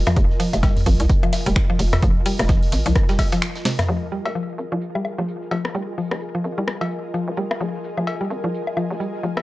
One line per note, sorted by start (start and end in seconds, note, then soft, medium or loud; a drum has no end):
0.00 3.87 F4 medium
0.00 3.89 A#4 medium
0.00 3.89 D#5 medium
0.00 3.90 D#5 medium
0.00 3.89 G#5 medium
0.07 0.09 F3 loud
0.07 cross-stick medium
0.07 closed hi-hat medium
0.07 mid tom medium
0.07 low woodblock medium
0.16 0.26 F1 loud
0.16 kick loud
0.16 closed hi-hat medium
0.16 closed hi-hat soft
0.30 snare soft
0.40 0.46 F3 loud
0.40 snare medium
0.40 closed hi-hat medium
0.40 ride medium
0.53 0.82 F1 medium
0.53 closed hi-hat soft
0.53 closed hi-hat medium
0.53 low woodblock medium
0.63 0.69 G3 loud
0.63 kick loud
0.63 snare loud
0.63 closed hi-hat soft
0.63 closed hi-hat medium
0.63 cowbell medium
0.77 closed hi-hat soft
0.77 mid tom medium
0.77 ride medium
0.86 0.96 G#1 medium
0.86 0.89 F3 loud
0.86 kick medium
0.86 closed hi-hat medium
0.86 ride medium
1.00 1.07 C2 medium
1.00 closed hi-hat medium
1.09 kick loud
1.09 closed hi-hat soft
1.09 closed hi-hat medium
1.23 1.27 F3 loud
1.23 closed hi-hat soft
1.23 low woodblock medium
1.33 snare loud
1.33 closed hi-hat medium
1.33 ride medium
1.33 low woodblock medium
1.46 1.53 F1 medium
1.46 1.51 G3 loud
1.46 closed hi-hat medium
1.46 closed hi-hat soft
1.56 finger snap loud
1.56 kick loud
1.56 closed hi-hat medium
1.56 closed hi-hat soft
1.70 1.72 F3 loud
1.79 1.97 F1 medium
1.79 closed hi-hat medium
1.79 ride medium
1.93 cross-stick medium
1.93 snare soft
1.93 closed hi-hat medium
1.93 mid tom medium
1.93 cowbell medium
2.02 2.12 F1 loud
2.02 2.09 F3 loud
2.02 kick loud
2.02 closed hi-hat soft
2.02 closed hi-hat medium
2.26 2.32 G3 loud
2.26 closed hi-hat medium
2.26 open hi-hat medium
2.26 ride medium
2.39 2.68 F1 medium
2.39 cross-stick medium
2.39 closed hi-hat medium
2.39 low woodblock medium
2.48 2.51 F3 loud
2.48 kick loud
2.48 snare loud
2.48 closed hi-hat soft
2.48 closed hi-hat medium
2.63 closed hi-hat soft
2.63 ride medium
2.72 2.82 G#1 medium
2.72 snare loud
2.72 closed hi-hat medium
2.72 ride medium
2.86 2.93 C2 medium
2.86 2.90 F3 loud
2.86 closed hi-hat medium
2.86 closed hi-hat soft
2.95 kick loud
2.95 cross-stick medium
2.95 closed hi-hat soft
2.95 closed hi-hat medium
3.09 3.13 G3 loud
3.09 snare loud
3.09 closed hi-hat medium
3.09 closed hi-hat soft
3.19 kick medium
3.19 closed hi-hat medium
3.19 ride medium
3.19 cowbell medium
3.32 3.35 F3 loud
3.32 snare soft
3.32 closed hi-hat medium
3.42 finger snap loud
3.42 snare loud
3.42 closed hi-hat soft
3.42 closed hi-hat medium
3.55 snare loud
3.55 closed hi-hat medium
3.65 3.68 C3 loud
3.65 snare medium
3.65 snare loud
3.65 closed hi-hat medium
3.65 ride medium
3.79 cross-stick medium
3.79 snare loud
3.79 closed hi-hat medium
3.79 mid tom medium
3.79 low woodblock medium
3.89 3.98 F1 loud
3.89 3.95 F3 loud
3.89 9.42 F4 medium
3.89 9.42 G#4 medium
3.89 closed hi-hat medium
4.02 snare soft
4.08 9.42 A#4 medium
4.12 4.18 G3 loud
4.12 snare soft
4.12 closed hi-hat medium
4.25 4.54 F1 medium
4.25 cowbell medium
4.25 low woodblock medium
4.35 4.38 F3 loud
4.35 closed hi-hat medium
4.49 closed hi-hat soft
4.58 4.68 G#1 medium
4.58 closed hi-hat medium
4.72 4.79 C2 medium
4.72 4.76 F3 loud
4.72 9.42 D#5 medium
4.72 9.42 G#5 medium
4.82 closed hi-hat medium
4.95 4.99 G3 medium
4.95 low woodblock medium
5.05 closed hi-hat medium
5.05 low woodblock medium
5.18 5.25 F1 medium
5.18 5.21 F3 loud
5.18 snare soft
5.28 closed hi-hat medium
5.41 snare soft
5.51 5.69 F1 medium
5.51 5.57 F3 loud
5.51 cowbell medium
5.65 cross-stick medium
5.65 snare soft
5.75 5.84 F1 medium
5.75 5.81 G3 loud
5.75 closed hi-hat medium
5.98 6.00 F3 loud
5.98 open hi-hat medium
6.11 6.40 F1 medium
6.11 cross-stick medium
6.21 closed hi-hat medium
6.34 6.39 F3 loud
6.34 closed hi-hat soft
6.44 6.54 G#1 medium
6.44 closed hi-hat medium
6.58 6.65 C2 medium
6.58 6.62 G3 loud
6.68 cross-stick medium
6.68 closed hi-hat medium
6.81 6.83 F3 medium
6.81 cowbell medium
6.91 closed hi-hat medium
7.14 7.20 F3 loud
7.14 closed hi-hat medium
7.28 7.35 D#1 medium
7.37 7.47 F1 medium
7.37 7.43 G3 loud
7.37 closed hi-hat medium
7.51 cross-stick medium
7.51 low woodblock medium
7.61 7.70 F1 medium
7.61 7.63 F3 loud
7.61 closed hi-hat medium
7.74 snare soft
7.83 snare soft
7.83 closed hi-hat medium
7.97 8.26 F1 medium
7.97 8.02 F3 loud
7.97 closed hi-hat soft
7.97 low woodblock medium
8.07 closed hi-hat medium
8.07 cowbell medium
8.20 8.25 G3 loud
8.20 closed hi-hat soft
8.30 8.40 G#1 medium
8.30 closed hi-hat medium
8.44 8.51 C2 medium
8.44 8.46 F3 loud
8.54 closed hi-hat medium
8.67 low woodblock medium
8.77 8.83 F3 loud
8.77 closed hi-hat medium
8.77 low woodblock medium
8.91 8.97 F1 medium
8.91 snare soft
9.00 9.06 G3 loud
9.00 closed hi-hat medium
9.14 snare soft
9.23 9.41 F1 medium
9.23 9.26 F3 loud
9.23 closed hi-hat medium
9.37 cross-stick medium
9.37 snare soft
9.37 cowbell medium